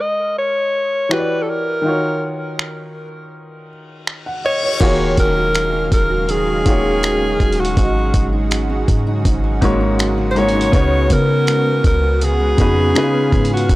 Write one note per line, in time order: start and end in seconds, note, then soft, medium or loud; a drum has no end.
0.00 1.05 G#3 medium
0.00 1.06 D#4 medium
0.00 1.07 F#4 medium
0.00 1.08 A#4 medium
0.00 1.08 C#5 medium
0.00 0.37 D#5 medium
0.38 1.14 C#5 loud
1.09 1.84 E3 medium
1.09 1.84 E4 medium
1.09 1.85 F#4 medium
1.09 1.85 G4 medium
1.09 1.44 B4 medium
1.09 1.18 C#5 medium
1.09 finger snap loud
1.19 1.89 D5 medium
1.42 1.51 A4 medium
1.50 2.60 A#4 medium
1.82 4.01 D#3 medium
1.82 4.02 D#4 medium
1.82 4.03 F4 medium
1.87 4.04 F#4 medium
1.87 3.68 C#5 medium
2.59 finger snap loud
3.33 reverse cymbal medium
4.07 finger snap loud
4.26 4.43 F#5 medium
4.45 5.15 C#5 loud
4.45 4.62 D#5 medium
4.63 4.82 C#5 medium
4.80 5.16 D#1 loud
4.80 12.92 C#3 medium
4.80 5.72 D#3 medium
4.80 6.28 D#3 medium
4.80 7.74 F#3 medium
4.80 10.69 G#3 medium
4.80 5.73 A#3 medium
4.80 5.73 F4 medium
4.80 5.36 F#4 medium
4.80 5.73 F#4 medium
4.80 5.74 G#4 medium
4.80 5.74 C#5 loud
4.80 7.74 F5 medium
4.80 kick loud
4.80 closed hi-hat medium
4.80 crash medium
4.99 5.54 G#3 medium
5.17 5.89 D#1 loud
5.17 5.73 C#4 medium
5.17 5.89 A#4 loud
5.17 kick medium
5.17 closed hi-hat medium
5.36 6.09 F#4 medium
5.55 5.91 G#3 medium
5.55 finger snap loud
5.55 closed hi-hat medium
5.73 6.65 C#4 medium
5.91 6.63 D#1 loud
5.91 6.46 G#3 medium
5.91 6.32 A#4 medium
5.91 kick medium
5.91 closed hi-hat medium
6.10 6.29 F#4 medium
6.29 7.95 D#3 medium
6.29 6.84 F#4 medium
6.29 7.62 G#4 loud
6.29 closed hi-hat medium
6.47 7.02 G#3 medium
6.65 7.37 D#1 loud
6.65 7.58 D#3 medium
6.65 7.58 A#3 medium
6.65 7.21 C#4 medium
6.65 7.58 F4 medium
6.65 7.59 F#4 medium
6.65 7.59 G#4 medium
6.65 7.59 C#5 medium
6.65 kick medium
6.65 closed hi-hat medium
6.84 7.58 F#4 medium
7.03 7.39 G#3 medium
7.03 finger snap loud
7.03 closed hi-hat medium
7.21 7.77 C#4 medium
7.40 7.76 D#1 medium
7.40 7.99 G#3 medium
7.40 kick medium
7.40 closed hi-hat soft
7.52 closed hi-hat soft
7.58 9.28 F#4 medium
7.58 8.33 F#4 medium
7.65 closed hi-hat medium
7.77 8.13 G#1 loud
7.77 9.24 G#2 medium
7.77 8.32 D#4 medium
7.77 12.91 F#4 medium
7.77 kick loud
7.77 closed hi-hat medium
7.96 8.51 F#3 medium
8.14 8.85 G#1 loud
8.14 8.69 C#4 medium
8.14 kick medium
8.14 closed hi-hat medium
8.33 9.06 D#4 medium
8.51 8.88 F#3 medium
8.51 finger snap loud
8.51 closed hi-hat medium
8.70 9.62 C#4 medium
8.88 9.24 G#2 loud
8.88 9.43 F#3 medium
8.88 kick medium
8.88 closed hi-hat medium
9.07 9.25 D#4 medium
9.25 9.61 G#1 loud
9.25 10.81 G#2 medium
9.25 9.79 D#4 medium
9.25 kick medium
9.25 closed hi-hat medium
9.44 9.99 F#3 medium
9.61 10.69 G#1 medium
9.61 10.08 G#2 medium
9.61 10.08 G#3 medium
9.61 10.09 A#3 medium
9.61 10.17 C#4 medium
9.61 10.09 F#4 medium
9.61 10.09 C#5 medium
9.61 kick loud
9.61 closed hi-hat medium
9.81 10.54 D#4 medium
9.99 10.36 F#3 medium
9.99 finger snap loud
9.99 closed hi-hat medium
10.18 11.10 C#4 medium
10.31 10.40 C5 medium
10.35 10.59 G#2 medium
10.35 10.91 F#3 medium
10.35 10.59 G#3 medium
10.35 10.59 A#3 medium
10.35 10.60 F#4 medium
10.35 11.14 C#5 loud
10.35 10.60 C#5 medium
10.35 closed hi-hat soft
10.48 closed hi-hat soft
10.55 10.73 D#4 medium
10.61 closed hi-hat medium
10.72 11.09 C#2 loud
10.72 11.65 C#3 loud
10.72 12.21 C#3 medium
10.72 11.65 B3 medium
10.72 13.67 B3 medium
10.72 11.66 D#4 medium
10.72 11.28 F#4 medium
10.72 11.66 F#4 medium
10.72 11.66 C#5 loud
10.72 kick loud
10.72 closed hi-hat medium
10.92 11.47 G#3 medium
11.10 11.81 C#3 loud
11.10 11.66 B3 medium
11.10 11.85 A#4 loud
11.10 kick medium
11.10 closed hi-hat medium
11.29 12.02 F#4 medium
11.47 11.84 G#3 medium
11.47 finger snap loud
11.47 closed hi-hat medium
11.66 12.57 B3 medium
11.84 12.55 C#2 loud
11.84 12.40 G#3 medium
11.84 12.25 A#4 medium
11.84 kick medium
11.84 closed hi-hat medium
12.03 12.21 F#4 medium
12.21 12.94 C#3 medium
12.21 12.76 F#4 medium
12.21 13.52 G#4 loud
12.21 closed hi-hat medium
12.40 13.32 G#3 medium
12.57 12.94 F2 loud
12.57 12.93 C#3 medium
12.57 12.95 B3 medium
12.57 13.03 B3 medium
12.57 12.94 D#4 medium
12.57 12.96 F#4 medium
12.57 12.96 B4 medium
12.57 kick loud
12.57 closed hi-hat medium
12.77 13.03 F#4 medium
12.94 13.54 C#3 medium
12.94 13.69 C#3 medium
12.94 13.76 C#3 medium
12.94 13.55 C#4 medium
12.94 13.55 D#4 medium
12.94 13.03 E4 medium
12.94 13.56 B4 medium
12.94 13.76 F5 medium
12.94 finger snap loud
12.94 closed hi-hat medium
13.03 13.59 F4 medium
13.14 13.76 B3 medium
13.32 13.68 G#2 medium
13.32 13.69 G#3 medium
13.32 kick medium
13.32 closed hi-hat soft
13.45 closed hi-hat soft
13.51 13.76 F4 medium
13.51 13.76 F#4 medium
13.57 closed hi-hat medium
13.69 13.76 F#1 loud
13.69 13.76 A#2 medium
13.69 13.76 F#3 medium
13.69 13.76 G#3 medium
13.69 13.76 G#4 medium
13.69 kick loud
13.69 closed hi-hat medium